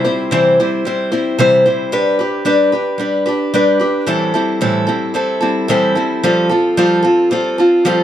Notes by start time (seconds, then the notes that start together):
0.04 G3 C4 E4 C5
0.31 C3 E3 G3 C4 E4 C5
0.60 G3 C4 E4 C5
0.85 G3 C4 E4 C5
1.12 G3 C4 E4 C5
1.38 C3 E3 G3 C4 E4 C5
1.66 G3 C4 E4 C5
1.92 G3 D4 G4 B4
2.19 D4 G4 B4
2.45 G3 D4 G4 B4
2.72 D4 G4 B4
2.98 G3 D4 G4 B4
3.26 D4 G4 B4
3.54 G3 D4 G4 B4
3.80 D4 G4 B4
4.06 A2 E3 G3 C4 E4 A4
4.34 G3 C4 E4 A4
4.61 A2 E3 G3 C4 E4 A4
4.87 G3 C4 E4 A4
5.14 G3 C4 E4 A4
5.41 G3 C4 E4 A4
5.68 A2 E3 G3 C4 E4 A4
5.95 G3 C4 E4 A4
6.23 F3 G3 C4 F4 A4
6.49 C4 F4 A4
6.77 F3 G3 C4 F4 A4
7.03 C4 F4 A4
7.31 G3 C4 F4 A4
7.58 C4 F4 A4
7.85 F3 G3 C4 F4 A4